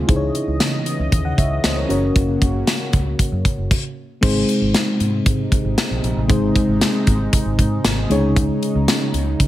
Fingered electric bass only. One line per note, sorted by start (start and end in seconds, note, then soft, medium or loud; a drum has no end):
0.09 0.28 C#2 loud
0.48 0.57 C#2 loud
0.61 0.80 C#3 medium
0.99 1.09 C#2 medium
1.12 1.32 D#2 medium
1.38 1.57 C#2 medium
1.64 1.83 C#2 medium
1.90 2.09 F#1 loud
2.16 2.35 F#1 loud
2.42 2.61 F#1 loud
2.93 3.13 C#2 medium
3.19 muted fingered electric bass stroke soft
3.32 3.42 F#2 medium
3.58 3.68 F#1 medium
4.23 4.42 G#1 loud
4.61 4.71 G#1 medium
5.00 5.20 G#2 medium
5.26 5.45 G#2 loud
5.65 5.74 G#1 medium
5.91 6.00 A#1 medium
6.04 6.13 A#1 loud
6.17 6.26 A1 loud
6.30 6.49 G#1 loud
6.68 6.78 G#1 medium
7.07 7.27 G#1 medium
7.46 7.55 G#1 medium
7.59 7.78 G#2 loud
7.84 8.04 G#1 loud
8.10 8.49 C#2 loud
8.75 8.85 C#2 loud
9.14 9.33 C#2 loud
9.40 9.48 C#3 loud